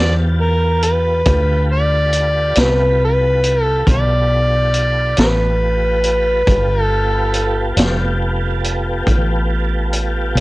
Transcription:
0.00 1.23 E2 medium
0.00 1.22 B3 medium
0.00 1.22 F4 medium
0.00 1.22 G4 medium
0.00 0.14 D5 medium
0.00 1.22 A5 medium
0.41 0.81 A#4 medium
0.83 1.66 B4 medium
0.83 closed hi-hat medium
1.25 2.53 D2 medium
1.25 6.43 F4 medium
1.25 6.42 G4 medium
1.25 6.42 A4 medium
1.25 6.43 B4 medium
1.25 kick loud
1.25 closed hi-hat medium
1.72 2.62 D5 medium
2.13 closed hi-hat medium
2.56 3.83 C2 medium
2.56 snare loud
2.56 closed hi-hat medium
2.60 3.02 B4 medium
3.05 3.63 B4 medium
3.44 closed hi-hat medium
3.63 3.85 A4 medium
3.87 5.13 B1 medium
3.87 kick medium
3.87 closed hi-hat medium
3.91 5.15 D5 medium
4.74 closed hi-hat medium
5.17 6.44 A1 medium
5.17 6.82 B4 medium
5.17 snare loud
5.17 closed hi-hat medium
6.04 closed hi-hat medium
6.46 7.73 G1 medium
6.46 10.40 B3 medium
6.46 10.40 F4 medium
6.46 10.40 G4 medium
6.46 10.40 A4 medium
6.46 kick medium
6.46 closed hi-hat medium
6.82 7.74 A4 medium
7.34 closed hi-hat medium
7.76 9.02 F1 medium
7.76 snare loud
7.76 closed hi-hat medium
8.64 closed hi-hat medium
9.07 10.32 A1 medium
9.07 kick medium
9.07 closed hi-hat medium
9.93 closed hi-hat medium
10.35 10.40 B1 medium
10.35 closed hi-hat medium

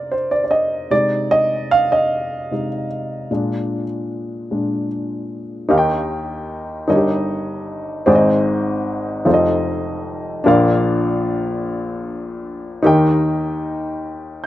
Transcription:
0.00 0.90 C3 medium
0.00 0.92 A#3 soft
0.00 0.92 D#4 medium
0.00 0.92 A#4 medium
0.00 0.12 C5 medium
0.00 0.12 D5 medium
0.12 0.32 C5 medium
0.31 0.42 D5 medium
0.44 0.51 D5 medium
0.51 0.92 D#5 medium
0.90 2.50 C3 medium
0.90 2.50 G#3 medium
0.90 2.51 D#4 medium
0.90 1.28 D5 loud
1.31 1.72 D#5 loud
1.71 1.91 F5 loud
1.92 2.67 D#5 medium
2.51 2.86 C3 soft
2.51 2.87 G#3 soft
2.51 2.87 D#4 soft
3.31 3.83 A#2 medium
3.31 3.84 G#3 medium
3.31 3.84 D4 medium
4.51 4.86 A#2 soft
4.51 4.86 G#3 soft
4.51 4.86 D4 medium
5.69 6.84 D#2 medium
5.69 6.84 D#3 medium
5.69 6.86 D#4 medium
5.69 6.88 G4 medium
5.69 6.87 A#4 medium
5.69 6.88 D#5 medium
5.69 5.76 F5 medium
5.78 6.92 G5 medium
6.88 8.04 G1 medium
6.88 8.04 G2 medium
6.88 8.05 D#4 medium
6.88 6.95 F#4 soft
6.88 8.07 A#4 medium
6.88 8.08 C#5 medium
6.88 8.08 D#5 medium
6.95 8.11 G4 medium
8.06 9.22 G#1 medium
8.06 9.22 G#2 medium
8.06 9.26 C4 medium
8.06 9.24 D#4 medium
8.06 9.26 G#4 medium
8.06 9.25 C5 medium
8.06 8.14 D5 medium
8.15 9.30 D#5 medium
9.25 10.41 F1 medium
9.25 10.41 F2 medium
9.25 10.45 D#4 medium
9.25 10.44 F4 medium
9.25 10.45 A4 medium
9.25 10.45 C5 medium
9.25 9.33 D5 medium
9.34 10.49 D#5 medium
10.44 12.80 A#1 medium
10.44 12.80 A#2 medium
10.44 12.79 D4 medium
10.44 12.80 F4 medium
10.44 12.80 A#4 medium
10.44 12.80 D5 medium
10.44 12.81 F5 medium
12.82 14.47 D#2 medium
12.82 14.47 D#3 medium
12.82 14.47 D#4 medium
12.82 14.47 G4 medium
12.82 14.47 A#4 medium
12.82 14.47 D#5 medium
12.86 14.47 G5 medium
14.44 14.47 G6 medium

